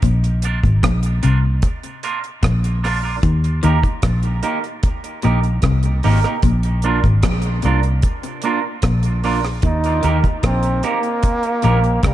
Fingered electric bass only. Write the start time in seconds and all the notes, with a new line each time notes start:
0.03 A#1
0.64 G#1
0.83 A#1
1.25 C2
2.43 A#1
3.23 D#2
3.64 D#2
4.03 A#1
5.25 A#1
5.63 C2
6.05 G#1
6.44 A#1
7.04 G#1
7.24 A#1
7.65 C2
8.83 A#1
9.63 D#2
10.04 D#2
10.44 A#1
11.64 A#1
12.03 C2